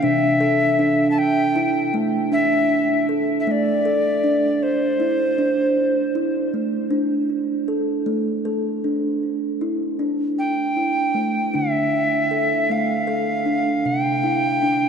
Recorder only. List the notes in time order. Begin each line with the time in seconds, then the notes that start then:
0.04 E5
1.11 A5
1.18 G5
2.33 E5
3.40 E5
3.48 D5 E5
4.63 C5
10.39 G5
11.56 E5
12.72 F5
13.86 G5